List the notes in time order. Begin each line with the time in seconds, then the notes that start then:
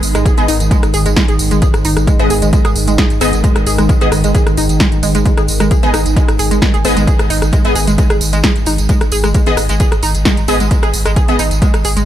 Already playing: G#2 D#3
0.03 G#1, open hi-hat, tambourine
0.15 G#1 G#3, cross-stick, closed hi-hat, tambourine
0.26 G#4, kick, closed hi-hat, tambourine
0.38 G#1 B3 G#4 D#5, closed hi-hat, tambourine
0.48 G#1 D#4, open hi-hat, tambourine
0.60 G#1, closed hi-hat, tambourine
0.71 G#3, kick, closed hi-hat, tambourine
0.83 G#1, cross-stick, closed hi-hat, tambourine
0.94 G#1 G#4, open hi-hat, tambourine
1.06 G#1 G#3, closed hi-hat, tambourine
1.16 G#3, kick, snare, closed hi-hat, tambourine
1.28 G#1 G#4, closed hi-hat, tambourine
1.39 G#1, open hi-hat, tambourine
1.51 G#1 G#3, closed hi-hat, tambourine
1.62 G#4, kick, closed hi-hat, tambourine
1.74 G#1, cross-stick, closed hi-hat, tambourine
1.85 G#1 D#4, open hi-hat, tambourine
1.97 G#1, cross-stick, closed hi-hat, tambourine
2.07 G#3, kick, closed hi-hat, tambourine
2.19 G#1 B3 G#4 D#5, closed hi-hat, tambourine
2.30 G#1 G#4, open hi-hat, tambourine
2.42 G#1 G#3, closed hi-hat, tambourine
2.53 G#3, kick, closed hi-hat, tambourine
2.65 G#1 G#4, cross-stick, closed hi-hat, tambourine
2.76 G#1, open hi-hat, tambourine
2.87 G#1 G#3, closed hi-hat, tambourine
2.98 G#4, kick, snare, closed hi-hat, tambourine
3.10 G#1, closed hi-hat, tambourine
3.21 G#1 B3 D#4 G#4 D#5, open hi-hat, tambourine
3.33 G#1, closed hi-hat, tambourine
3.44 G#3, kick, closed hi-hat, tambourine
3.56 G#1, cross-stick, closed hi-hat, tambourine
3.66 G#1 G#4, open hi-hat, tambourine
3.78 G#1 G#3, cross-stick, closed hi-hat, tambourine
3.89 G#3, kick, closed hi-hat, tambourine
4.01 G#1 B3 G#4 D#5, closed hi-hat, tambourine
4.12 G#1, cross-stick, open hi-hat, tambourine
4.24 G#1 G#3, closed hi-hat, tambourine
4.35 G#4, kick, closed hi-hat, tambourine
4.47 G#1, cross-stick, closed hi-hat, tambourine
4.57 G#1 D#4, open hi-hat, tambourine
4.69 G#1, closed hi-hat, tambourine
4.80 G#3, kick, snare, closed hi-hat, tambourine
4.92 G#1, closed hi-hat, tambourine
5.03 G#1 G#3, open hi-hat, tambourine
5.15 G#1 G#3, closed hi-hat, tambourine
5.26 G#3, kick, closed hi-hat, tambourine
5.38 G#1 G#4, cross-stick, closed hi-hat, tambourine
5.48 G#1, open hi-hat, tambourine
5.60 G#1 G#3, cross-stick, closed hi-hat, tambourine
5.71 G#4, kick, closed hi-hat, tambourine
5.83 G#1 B3 G#4 D#5, closed hi-hat, tambourine
5.94 G#1 D#4, cross-stick, open hi-hat, tambourine
6.06 G#1, closed hi-hat, tambourine
6.16 G#3, kick, closed hi-hat, tambourine
6.28 G#1, cross-stick, closed hi-hat, tambourine
6.39 G#1 G#4, open hi-hat, tambourine
6.51 G#1 G#3, closed hi-hat, tambourine
6.62 G#3, kick, snare, closed hi-hat, tambourine
6.74 G#1 G#4, closed hi-hat, tambourine
6.85 G#1 B3 G#4 D#5, open hi-hat, tambourine
6.97 G#1 G#3, closed hi-hat, tambourine
7.07 G#4, kick, closed hi-hat, tambourine
7.19 G#1, cross-stick, closed hi-hat, tambourine
7.30 G#1 D#4, open hi-hat, tambourine
7.42 G#1, cross-stick, closed hi-hat, tambourine
7.53 G#3, kick, closed hi-hat, tambourine
7.65 G#1 B3 G#4 D#5, closed hi-hat, tambourine
7.75 G#1 G#4, open hi-hat, tambourine
7.87 G#1 G#3, closed hi-hat, tambourine
7.98 G#3, kick, closed hi-hat, tambourine
8.10 G#1 G#4, cross-stick, closed hi-hat, tambourine
8.21 G#1, open hi-hat, tambourine
8.33 G#1 G#3, closed hi-hat, tambourine
8.44 G#4, kick, snare, closed hi-hat, tambourine
8.56 G#1, closed hi-hat, tambourine
8.66 G#1 D#4, open hi-hat, tambourine
8.78 G#1, closed hi-hat, tambourine
8.89 G#3, kick, closed hi-hat, tambourine
9.01 G#1, cross-stick, closed hi-hat, tambourine
9.12 G#1 G#4, open hi-hat, tambourine
9.24 G#1 G#3, cross-stick, closed hi-hat, tambourine
9.34 G#3, kick, closed hi-hat, tambourine
9.46 G#1 B3 G#4 D#5, closed hi-hat, tambourine
9.57 G#1, cross-stick, open hi-hat, tambourine
9.69 G#1 G#3, closed hi-hat, tambourine
9.80 G#4, kick, closed hi-hat, tambourine
9.92 G#1, cross-stick, closed hi-hat, tambourine
10.03 G#1 D#4, open hi-hat, tambourine
10.15 G#1, closed hi-hat, tambourine
10.25 G#3, kick, snare, closed hi-hat, tambourine
10.37 G#1, closed hi-hat, tambourine
10.48 G#1 B3 G#4 D#5, open hi-hat, tambourine
10.60 G#1 G#3, closed hi-hat, tambourine
10.71 G#3, kick, closed hi-hat, tambourine
10.83 G#1 G#4, cross-stick, closed hi-hat, tambourine
10.94 G#1, open hi-hat, tambourine
11.06 G#1 G#3, cross-stick, closed hi-hat, tambourine
11.16 G#4, kick, closed hi-hat, tambourine
11.28 G#1 B3 G#4 D#5, closed hi-hat, tambourine
11.39 G#1 D#4, open hi-hat, tambourine
11.51 G#1, closed hi-hat, tambourine
11.62 G#3, kick, closed hi-hat, tambourine
11.74 G#1, cross-stick, closed hi-hat, tambourine
11.85 G#1 G#4, open hi-hat, tambourine
11.97 G#1 G#3, closed hi-hat, tambourine